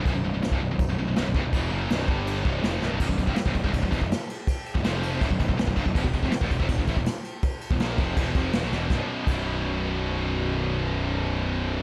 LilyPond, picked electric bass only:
\new Staff \with { instrumentName = "Picked electric bass" } { \clef bass \time 4/4 \key e \dorian \tempo 4 = 163 b,,,16 b,,,16 b,,,16 b,,,16 b,,,16 c,,16 b,,,16 b,,,8 b,,,16 b,,,16 b,,,16 b,,,16 b,,,16 c,,16 b,,,16 | e,,8 fis,,8 b,,,8 g,,4 c,,8 eis,,8 b,,,16 c,,16 | b,,,16 b,,,16 b,,,16 c,,16 r16 b,,,16 b,,,16 c,,16 b,,,16 b,,,16 e,,16 b,,,16 r4 | r8. b,,,16 f,,4 d,,16 b,,,16 b,,,16 b,,,16 b,,,16 b,,,16 c,,16 b,,,16 |
e,,16 e,,16 e,,16 eis,,16 r16 e,,16 e,,16 eis,,16 e,,16 e,,16 a,,16 e,,16 r4 | r8. e,,16 ais,,8 eis,,8 e,,8 eis,,8 e,,16 b,,16 e,,8 | b,,,16 r8. b,,,2.~ | b,,,1 | }